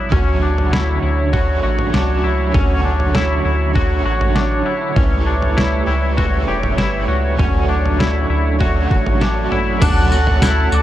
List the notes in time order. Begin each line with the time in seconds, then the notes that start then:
Already playing: E4
0.10 D2 D3 F#3 A3 C#4 F#4 C#5, kick, floor tom
0.15 C#4 F#4
0.42 D4
0.58 floor tom
0.73 E4, snare
1.03 D2 E4
1.33 D3 F#3 A3 C#4 F#4, kick, floor tom
1.63 A1 F#4
1.79 floor tom
1.93 C#2 F#3 A3 C#4 D4 F#4, snare
2.23 C#2 E4
2.52 D2 D3 F#3 A3 C#4, kick, floor tom
2.57 C#4 F#4
2.85 D4
3.00 floor tom
3.15 E4, snare
3.45 D2 E4
3.74 D3 F#3 A3 F#4, kick, floor tom
3.78 C#4 F#4
4.05 A1 F#4
4.21 floor tom
4.36 D4, snare
4.66 E4
4.95 C#2 E3 G3 A3 C#4 E4 G4, kick, floor tom
5.26 D4
5.42 floor tom
5.57 E4, snare
5.87 C#2 E4 G4
5.91 A3
6.17 C#3 E3 A3 E4 F#4 G4, kick, floor tom
6.47 E1 G4
6.63 floor tom
6.77 G1 E3 A3 E4, snare
6.81 G4
7.08 C#2 F#4
7.37 D2 D3 F#3 A3 C#4 F#4, kick, floor tom
7.41 C#4 F#4
7.69 D4
7.86 floor tom
7.99 E4, snare
8.30 D2 E4
8.59 D3 F#3 A3 C#4 F#4, kick, floor tom
8.91 A1 F#4, kick
9.06 floor tom
9.20 F#3 A3 C#4 D4 F#4, snare
9.52 E4, floor tom
9.80 D2 D3 F#3 A3 C#4 D4 F#4 A4 F#5 A5 F#6, kick, floor tom, crash, tambourine
10.11 C#4 F#4 F#6, tambourine
10.16 A3
10.27 floor tom
10.42 E4, snare, tambourine
10.72 D2 F#4 D6, tambourine